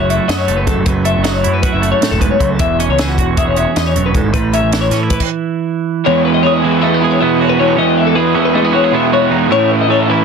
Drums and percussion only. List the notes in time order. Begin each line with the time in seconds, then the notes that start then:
0.10 closed hi-hat
0.29 snare, closed hi-hat
0.48 closed hi-hat
0.67 kick, closed hi-hat
0.86 kick, closed hi-hat
1.05 closed hi-hat
1.24 snare, closed hi-hat
1.44 closed hi-hat
1.63 kick, closed hi-hat
1.83 closed hi-hat
2.02 snare, closed hi-hat
2.21 kick, closed hi-hat
2.40 kick, closed hi-hat
2.59 kick, closed hi-hat
2.80 closed hi-hat
2.98 snare, closed hi-hat
3.18 kick, closed hi-hat
3.37 kick, closed hi-hat
3.56 closed hi-hat
3.76 snare, closed hi-hat
3.96 closed hi-hat
4.14 kick, closed hi-hat
4.34 kick, closed hi-hat
4.53 closed hi-hat
4.72 snare, closed hi-hat
4.91 snare, closed hi-hat
5.10 kick, closed hi-hat
5.20 kick, crash